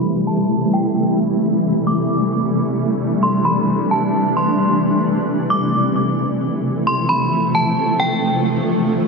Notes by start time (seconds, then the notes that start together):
Already playing: C3 E3 G3 A3 E4
0.27 A5
0.74 G5
1.87 D4 D6
3.23 C6
3.45 B5
3.91 A5
4.37 C6
5.50 F3 A3 E4 D6
6.87 C6
7.09 B5
7.32 D4
7.55 A5
8.00 G5